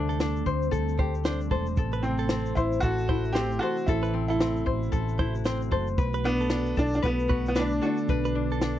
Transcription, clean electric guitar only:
0, 0, Header, 1, 2, 480
1, 0, Start_track
1, 0, Tempo, 526778
1, 1618, Time_signature, 4, 2, 24, 8
1, 8009, End_track
2, 0, Start_track
2, 0, Title_t, "Clean electric guitar"
2, 0, Program_c, 0, 27
2, 83, Note_on_c, 0, 69, 63
2, 399, Note_off_c, 0, 69, 0
2, 903, Note_on_c, 0, 72, 77
2, 1037, Note_off_c, 0, 72, 0
2, 1139, Note_on_c, 0, 72, 80
2, 1276, Note_off_c, 0, 72, 0
2, 1376, Note_on_c, 0, 69, 77
2, 1514, Note_off_c, 0, 69, 0
2, 1759, Note_on_c, 0, 71, 77
2, 1852, Note_off_c, 0, 71, 0
2, 1995, Note_on_c, 0, 69, 68
2, 2314, Note_off_c, 0, 69, 0
2, 2815, Note_on_c, 0, 72, 76
2, 2953, Note_off_c, 0, 72, 0
2, 3052, Note_on_c, 0, 72, 79
2, 3192, Note_off_c, 0, 72, 0
2, 3287, Note_on_c, 0, 69, 79
2, 3429, Note_off_c, 0, 69, 0
2, 3670, Note_on_c, 0, 71, 78
2, 3767, Note_off_c, 0, 71, 0
2, 3919, Note_on_c, 0, 69, 66
2, 4236, Note_off_c, 0, 69, 0
2, 4730, Note_on_c, 0, 72, 82
2, 4870, Note_off_c, 0, 72, 0
2, 4971, Note_on_c, 0, 72, 83
2, 5110, Note_off_c, 0, 72, 0
2, 5213, Note_on_c, 0, 69, 81
2, 5352, Note_off_c, 0, 69, 0
2, 5597, Note_on_c, 0, 71, 79
2, 5690, Note_off_c, 0, 71, 0
2, 5839, Note_on_c, 0, 69, 64
2, 6156, Note_off_c, 0, 69, 0
2, 6647, Note_on_c, 0, 71, 82
2, 6788, Note_off_c, 0, 71, 0
2, 6889, Note_on_c, 0, 71, 77
2, 7029, Note_off_c, 0, 71, 0
2, 7132, Note_on_c, 0, 66, 83
2, 7271, Note_off_c, 0, 66, 0
2, 7520, Note_on_c, 0, 71, 81
2, 7611, Note_off_c, 0, 71, 0
2, 7761, Note_on_c, 0, 69, 65
2, 8009, Note_off_c, 0, 69, 0
2, 8009, End_track
0, 0, End_of_file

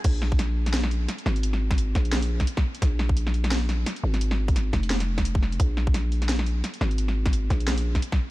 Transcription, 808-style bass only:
0, 0, Header, 1, 2, 480
1, 0, Start_track
1, 0, Tempo, 346821
1, 65, Time_signature, 4, 2, 24, 8
1, 11497, End_track
2, 0, Start_track
2, 0, Title_t, "808-style bass"
2, 0, Program_c, 0, 38
2, 63, Note_on_c, 0, 34, 99
2, 1487, Note_off_c, 0, 34, 0
2, 1745, Note_on_c, 0, 32, 98
2, 2688, Note_off_c, 0, 32, 0
2, 2704, Note_on_c, 0, 34, 102
2, 3408, Note_off_c, 0, 34, 0
2, 3903, Note_on_c, 0, 34, 97
2, 5327, Note_off_c, 0, 34, 0
2, 5585, Note_on_c, 0, 32, 100
2, 6528, Note_off_c, 0, 32, 0
2, 6546, Note_on_c, 0, 29, 99
2, 7729, Note_off_c, 0, 29, 0
2, 7747, Note_on_c, 0, 34, 98
2, 9169, Note_off_c, 0, 34, 0
2, 9426, Note_on_c, 0, 32, 99
2, 10369, Note_off_c, 0, 32, 0
2, 10383, Note_on_c, 0, 34, 98
2, 11088, Note_off_c, 0, 34, 0
2, 11497, End_track
0, 0, End_of_file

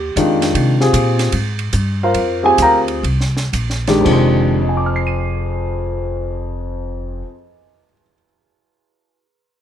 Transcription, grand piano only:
0, 0, Header, 1, 2, 480
1, 0, Start_track
1, 0, Tempo, 386598
1, 675, Time_signature, 4, 2, 24, 8
1, 1642, Tempo, 410397
1, 2602, Tempo, 448430
1, 3562, Tempo, 490196
1, 4042, Tempo, 547445
1, 9373, End_track
2, 0, Start_track
2, 0, Title_t, "Grand piano"
2, 0, Program_c, 0, 0
2, 0, Note_on_c, 0, 67, 61
2, 205, Note_on_c, 0, 56, 48
2, 206, Note_on_c, 0, 51, 59
2, 211, Note_on_c, 0, 62, 50
2, 215, Note_on_c, 0, 65, 61
2, 652, Note_off_c, 0, 67, 0
2, 929, Note_off_c, 0, 56, 0
2, 930, Note_off_c, 0, 51, 0
2, 932, Note_off_c, 0, 62, 0
2, 934, Note_off_c, 0, 65, 0
2, 1000, Note_on_c, 0, 67, 55
2, 1002, Note_on_c, 0, 60, 54
2, 1007, Note_on_c, 0, 65, 52
2, 1010, Note_on_c, 0, 68, 67
2, 1613, Note_off_c, 0, 67, 0
2, 1614, Note_off_c, 0, 60, 0
2, 1616, Note_off_c, 0, 65, 0
2, 1618, Note_off_c, 0, 68, 0
2, 2473, Note_on_c, 0, 77, 69
2, 2475, Note_on_c, 0, 65, 54
2, 2476, Note_on_c, 0, 72, 55
2, 2481, Note_on_c, 0, 70, 53
2, 2894, Note_off_c, 0, 77, 0
2, 2895, Note_off_c, 0, 65, 0
2, 2895, Note_off_c, 0, 72, 0
2, 2898, Note_off_c, 0, 70, 0
2, 2909, Note_on_c, 0, 67, 51
2, 2913, Note_on_c, 0, 60, 54
2, 2917, Note_on_c, 0, 65, 51
2, 2920, Note_on_c, 0, 68, 62
2, 2936, Note_on_c, 0, 80, 78
2, 3080, Note_off_c, 0, 80, 0
2, 3115, Note_on_c, 0, 82, 76
2, 3119, Note_on_c, 0, 79, 58
2, 3120, Note_on_c, 0, 70, 55
2, 3122, Note_on_c, 0, 77, 52
2, 3293, Note_off_c, 0, 82, 0
2, 3296, Note_off_c, 0, 79, 0
2, 3297, Note_off_c, 0, 70, 0
2, 3298, Note_off_c, 0, 77, 0
2, 3528, Note_off_c, 0, 67, 0
2, 3530, Note_off_c, 0, 60, 0
2, 3533, Note_off_c, 0, 65, 0
2, 3534, Note_off_c, 0, 68, 0
2, 4345, Note_on_c, 0, 51, 60
2, 4347, Note_on_c, 0, 56, 56
2, 4349, Note_on_c, 0, 62, 52
2, 4349, Note_on_c, 0, 67, 60
2, 4460, Note_on_c, 0, 41, 50
2, 4486, Note_on_c, 0, 53, 51
2, 4510, Note_on_c, 0, 60, 48
2, 4539, Note_on_c, 0, 68, 49
2, 4564, Note_on_c, 0, 72, 65
2, 4955, Note_off_c, 0, 51, 0
2, 4956, Note_off_c, 0, 56, 0
2, 4957, Note_off_c, 0, 62, 0
2, 4957, Note_off_c, 0, 67, 0
2, 4994, Note_on_c, 0, 75, 35
2, 5058, Note_on_c, 0, 80, 33
2, 5129, Note_on_c, 0, 86, 34
2, 5210, Note_on_c, 0, 89, 29
2, 5294, Note_on_c, 0, 96, 29
2, 5389, Note_on_c, 0, 99, 29
2, 7268, Note_off_c, 0, 41, 0
2, 7294, Note_off_c, 0, 53, 0
2, 7319, Note_off_c, 0, 60, 0
2, 7347, Note_off_c, 0, 68, 0
2, 7373, Note_off_c, 0, 72, 0
2, 7767, Note_off_c, 0, 75, 0
2, 7832, Note_off_c, 0, 80, 0
2, 7903, Note_off_c, 0, 86, 0
2, 7983, Note_off_c, 0, 89, 0
2, 8068, Note_off_c, 0, 96, 0
2, 8162, Note_off_c, 0, 99, 0
2, 9373, End_track
0, 0, End_of_file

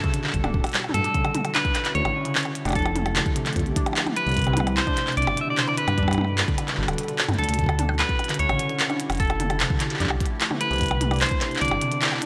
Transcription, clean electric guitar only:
0, 0, Header, 1, 2, 480
1, 0, Start_track
1, 0, Key_signature, 2, "major"
1, 0, Tempo, 402685
1, 1365, Time_signature, 4, 2, 24, 8
1, 14612, End_track
2, 0, Start_track
2, 0, Title_t, "Clean electric guitar"
2, 0, Program_c, 0, 27
2, 0, Note_on_c, 0, 69, 97
2, 837, Note_off_c, 0, 69, 0
2, 1125, Note_on_c, 0, 69, 97
2, 1839, Note_off_c, 0, 69, 0
2, 1844, Note_on_c, 0, 71, 98
2, 2319, Note_off_c, 0, 71, 0
2, 2324, Note_on_c, 0, 73, 106
2, 2996, Note_off_c, 0, 73, 0
2, 3286, Note_on_c, 0, 69, 103
2, 4677, Note_off_c, 0, 69, 0
2, 4966, Note_on_c, 0, 71, 108
2, 5680, Note_off_c, 0, 71, 0
2, 5685, Note_on_c, 0, 72, 102
2, 6162, Note_off_c, 0, 72, 0
2, 6166, Note_on_c, 0, 74, 112
2, 6447, Note_off_c, 0, 74, 0
2, 6451, Note_on_c, 0, 76, 97
2, 6555, Note_off_c, 0, 76, 0
2, 6559, Note_on_c, 0, 74, 99
2, 6665, Note_off_c, 0, 74, 0
2, 6670, Note_on_c, 0, 72, 98
2, 6774, Note_off_c, 0, 72, 0
2, 6778, Note_on_c, 0, 74, 94
2, 6884, Note_off_c, 0, 74, 0
2, 6889, Note_on_c, 0, 71, 106
2, 8806, Note_on_c, 0, 69, 97
2, 8864, Note_off_c, 0, 71, 0
2, 9527, Note_on_c, 0, 71, 100
2, 9547, Note_off_c, 0, 69, 0
2, 10003, Note_off_c, 0, 71, 0
2, 10008, Note_on_c, 0, 73, 105
2, 10678, Note_off_c, 0, 73, 0
2, 10965, Note_on_c, 0, 69, 97
2, 12357, Note_off_c, 0, 69, 0
2, 12645, Note_on_c, 0, 71, 102
2, 13361, Note_off_c, 0, 71, 0
2, 13366, Note_on_c, 0, 72, 98
2, 13812, Note_off_c, 0, 72, 0
2, 13846, Note_on_c, 0, 74, 103
2, 14518, Note_off_c, 0, 74, 0
2, 14612, End_track
0, 0, End_of_file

